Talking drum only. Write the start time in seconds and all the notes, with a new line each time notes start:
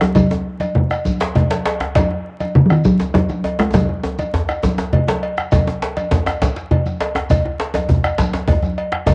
0.01 F#3
0.16 F#3
2.56 C#3
2.66 F#3
2.71 D#3
2.85 F#3
3.14 F#3
3.60 G#3
3.75 F#3